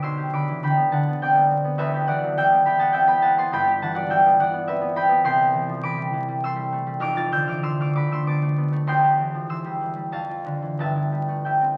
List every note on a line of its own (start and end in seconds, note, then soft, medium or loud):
0.00 1.83 B1 medium
0.00 0.76 B3 medium
0.00 0.16 G4 medium
0.00 1.22 D5 medium
0.00 0.63 G5 medium
0.00 0.33 B5 medium
0.00 1.83 C6 medium
0.00 0.32 D6 loud
0.00 0.53 E6 loud
0.17 1.92 G4 medium
0.33 0.62 D3 medium
0.33 0.62 B5 medium
0.33 1.83 D6 medium
0.48 0.73 E3 medium
0.63 0.91 D3 medium
0.63 1.21 G5 medium
0.63 2.64 B5 loud
0.77 1.07 B3 medium
0.92 1.82 D3 medium
0.92 1.83 F#5 medium
0.92 1.42 A5 medium
1.08 1.34 B3 medium
1.22 1.47 C4 soft
1.22 1.83 D5 medium
1.22 2.36 G5 medium
1.35 1.63 B3 medium
1.50 1.75 C4 medium
1.64 2.50 B3 medium
1.78 3.52 E1 medium
1.78 3.53 E2 medium
1.78 4.67 B4 medium
1.78 2.37 E5 loud
1.94 3.66 G4 medium
2.07 2.36 E3 medium
2.07 3.53 D5 medium
2.07 2.56 F#5 loud
2.23 2.47 F#3 medium
2.37 2.64 E3 medium
2.37 2.93 E5 medium
2.37 2.65 G5 loud
2.52 2.78 B3 medium
2.65 3.54 E3 medium
2.65 2.91 G5 medium
2.65 3.06 B5 loud
2.79 3.05 B3 medium
2.79 3.22 F#5 medium
2.79 3.03 A5 loud
2.93 3.18 C4 medium
2.93 4.10 E5 medium
2.93 3.08 G5 loud
3.07 3.36 B3 medium
3.07 3.52 G5 medium
3.07 3.32 B5 loud
3.22 3.47 C4 medium
3.22 3.54 F#5 medium
3.22 3.38 A5 loud
3.37 4.24 B3 medium
3.37 3.55 A5 medium
3.37 3.62 C6 loud
3.52 5.28 G1 medium
3.52 5.29 G2 medium
3.52 4.09 G5 medium
3.52 4.95 B5 loud
3.67 5.36 G4 medium
3.82 4.09 E3 medium
3.82 3.94 F#5 medium
3.82 4.05 A5 loud
3.94 4.19 F#3 medium
3.94 4.40 D5 medium
3.94 4.19 F#5 loud
4.10 4.38 E3 medium
4.10 4.66 E5 medium
4.10 4.96 G5 loud
4.25 4.52 B3 medium
4.39 5.29 E3 medium
4.39 5.29 D5 medium
4.39 4.89 F#5 loud
4.53 4.80 B3 medium
4.67 4.92 C4 medium
4.67 5.29 B4 medium
4.67 7.05 E5 loud
4.81 5.08 B3 medium
4.96 5.21 C4 medium
4.96 5.24 G5 medium
4.96 5.28 B5 loud
5.09 5.27 B3 medium
5.24 7.04 C2 medium
5.24 7.05 G5 loud
5.24 6.44 C6 loud
5.37 7.03 G4 medium
5.53 5.82 E3 medium
5.69 5.94 F3 medium
5.83 6.12 E3 medium
5.83 7.05 B5 medium
5.83 6.83 D6 loud
5.98 6.27 G3 medium
6.13 7.04 E3 medium
6.28 6.54 G3 medium
6.44 6.68 A3 soft
6.44 7.06 C6 medium
6.44 7.05 E6 loud
6.56 6.85 G3 medium
6.72 6.98 A3 medium
6.87 7.04 G3 medium
7.00 8.86 F1 medium
7.00 8.87 F2 medium
7.00 7.48 D6 loud
7.00 7.17 F6 loud
7.16 8.87 F4 medium
7.16 7.46 F6 medium
7.16 7.43 A6 loud
7.32 7.62 D3 medium
7.32 7.62 E6 medium
7.32 7.58 G6 loud
7.47 7.74 E3 medium
7.47 7.80 D6 medium
7.47 7.74 F6 loud
7.63 7.94 D3 medium
7.63 8.12 C6 medium
7.63 7.89 E6 loud
7.80 8.10 A3 medium
7.80 7.94 D6 medium
7.80 8.06 F6 loud
7.95 8.88 D3 medium
7.95 8.89 B5 medium
7.95 8.20 D6 loud
8.11 8.41 A3 medium
8.11 8.86 C6 medium
8.11 8.36 E6 medium
8.26 8.51 B3 soft
8.26 8.90 A5 medium
8.26 8.89 D6 loud
8.42 8.71 A3 medium
8.57 8.82 B3 medium
8.72 8.89 A3 medium
8.87 10.14 E1 medium
8.87 10.15 E2 medium
8.87 10.15 G5 medium
8.87 9.49 C6 loud
9.04 10.15 G4 medium
9.19 9.48 E3 medium
9.34 9.60 F3 soft
9.49 9.80 E3 medium
9.49 10.14 C6 medium
9.49 10.14 E6 loud
9.65 9.94 G3 medium
9.81 10.14 E3 medium
9.96 10.14 G3 medium
10.12 10.82 F2 medium
10.12 10.82 F5 medium
10.12 10.79 A5 medium
10.29 10.82 F4 medium
10.46 10.82 D3 soft
10.62 10.91 E3 soft
10.79 11.77 G1 medium
10.79 11.77 G2 medium
10.79 11.45 E5 medium
10.79 11.77 A5 loud
10.95 11.77 E4 medium
11.12 11.44 G3 soft
11.28 11.56 A3 soft
11.45 11.77 G3 soft
11.45 11.77 E5 soft
11.45 11.77 G5 medium
11.61 11.77 C4 soft